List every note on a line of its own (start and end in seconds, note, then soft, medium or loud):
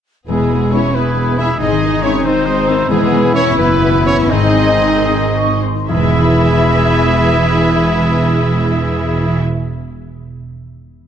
0.28 1.57 E1 soft
0.28 1.62 E2 soft
0.28 0.70 G#3 soft
0.28 0.50 G#3 soft
0.28 0.70 B3 medium
0.28 0.50 B3 soft
0.28 0.91 E4 soft
0.28 1.57 E4 soft
0.28 0.70 G#4 medium
0.28 0.74 G#4 medium
0.28 1.56 B5 soft
0.39 1.62 B2 soft
0.51 0.74 E3 soft
0.51 1.81 G#3 soft
0.51 0.72 G#3 soft
0.62 1.49 E4 soft
0.72 0.93 G#3 soft
0.72 0.80 B3 soft
0.72 0.95 B3 soft
0.72 0.95 C#4 medium
0.72 0.80 E4 soft
0.72 0.94 E4 medium
0.72 1.38 B4 soft
0.72 0.94 C#5 medium
0.72 0.96 C#5 medium
0.84 1.27 G#4 soft
0.94 1.17 E3 soft
0.94 1.16 G#3 soft
0.94 1.38 B3 soft
0.94 1.38 E4 soft
0.94 2.23 G#4 medium
0.94 1.40 B4 medium
0.94 1.39 B4 soft
0.94 1.16 E5 soft
1.06 1.62 B5 soft
1.17 1.37 G#3 soft
1.17 1.37 B3 soft
1.17 1.62 E5 soft
1.28 2.12 G#4 soft
1.38 1.61 E3 soft
1.38 1.59 G#3 soft
1.38 1.46 B3 soft
1.38 1.60 E4 medium
1.38 1.46 E4 soft
1.38 1.47 G#4 medium
1.38 1.62 B4 soft
1.38 1.46 E5 medium
1.38 1.60 E5 medium
1.50 1.62 E4 soft
1.60 2.88 G#1 medium
1.60 2.92 G#2 soft
1.60 1.81 G#3 soft
1.60 1.81 C4 soft
1.60 2.02 D#4 medium
1.60 2.92 D#4 medium
1.60 2.03 G#4 medium
1.60 2.02 D#5 medium
1.60 2.04 D#5 medium
1.60 2.88 C6 soft
1.71 2.92 D#3 soft
1.82 2.04 D#3 soft
1.82 3.11 G#3 soft
1.82 2.03 D#4 soft
1.93 2.78 D#4 soft
2.02 2.25 G#3 soft
2.02 2.11 C4 medium
2.02 2.25 C4 soft
2.02 2.25 C#4 medium
2.02 2.11 D#4 medium
2.02 2.11 E4 medium
2.02 2.67 C5 medium
2.02 2.24 C#5 medium
2.13 2.56 G#4 medium
2.24 2.46 D#3 soft
2.24 2.90 C4 medium
2.24 2.47 C4 medium
2.24 2.89 D#4 medium
2.24 2.46 D#4 medium
2.24 2.89 C5 medium
2.24 2.45 D#5 medium
2.35 2.92 C6 soft
2.46 2.67 G#3 medium
2.46 2.67 C4 soft
2.46 2.70 D#4 medium
2.46 2.92 D#5 medium
2.57 3.46 G#4 soft
2.68 2.90 D#3 medium
2.68 2.76 C4 medium
2.68 2.76 D#4 medium
2.68 2.90 D#4 medium
2.68 4.32 E4 medium
2.68 2.92 C5 medium
2.79 2.92 D#4 medium
2.89 3.55 E1 medium
2.89 4.33 E2 medium
2.89 3.55 E3 medium
2.89 3.34 G#3 medium
2.89 3.54 B3 medium
2.89 3.34 B3 medium
2.89 3.55 B3 medium
2.89 3.54 E4 medium
2.89 4.32 E4 medium
2.89 3.34 G#4 medium
2.89 3.36 G#4 medium
3.01 4.33 B2 medium
3.12 4.55 G#3 medium
3.23 4.16 E4 medium
3.34 3.58 C#4 medium
3.34 3.57 E4 loud
3.34 4.05 B4 medium
3.34 3.45 C#5 medium
3.34 3.58 C#5 medium
3.47 3.93 G#4 medium
3.58 4.31 F#1 medium
3.58 4.30 E3 medium
3.58 4.29 B3 medium
3.58 4.05 B3 medium
3.58 4.29 B3 medium
3.58 4.29 E4 medium
3.58 4.05 E4 medium
3.58 4.05 B4 medium
3.58 3.81 E5 medium
3.70 4.33 B5 medium
3.82 4.33 E5 medium
3.94 4.93 G#4 medium
4.05 4.30 C#4 medium
4.05 4.30 E4 medium
4.05 4.33 B4 soft
4.05 4.17 C#5 loud
4.05 4.31 C#5 medium
4.18 4.32 E4 medium
4.29 5.61 G#1 medium
4.29 5.91 G#2 medium
4.29 5.64 D#3 medium
4.29 5.61 C4 medium
4.29 5.48 C4 medium
4.29 5.61 D#4 medium
4.29 5.62 G#4 medium
4.29 5.59 D#5 medium
4.29 5.01 C6 medium
4.43 5.91 D#3 soft
4.56 6.02 G#3 soft
4.68 5.74 D#4 soft
4.81 5.60 C5 medium
4.94 5.46 G#4 medium
5.07 5.32 D#5 medium
5.07 5.13 D#6 medium
5.20 5.91 C6 medium
5.34 5.91 D#5 medium
5.34 5.61 C#6 medium
5.47 9.20 G#4 soft
5.61 5.91 C5 medium
5.61 5.89 C6 medium
5.75 5.91 D#4 soft
5.89 9.39 E1 medium
5.89 9.79 E2 medium
5.89 9.39 E3 medium
5.89 9.40 G#3 medium
5.89 9.39 B3 medium
5.89 9.39 E4 medium
5.89 9.40 E4 medium
5.89 9.39 G#4 medium
5.89 9.40 B4 medium
5.89 9.39 E5 medium
5.89 9.41 B5 medium
5.96 9.86 E3 medium
6.03 9.53 G#3 medium
6.10 9.60 E4 medium
6.17 9.67 B4 medium
6.25 9.74 E5 medium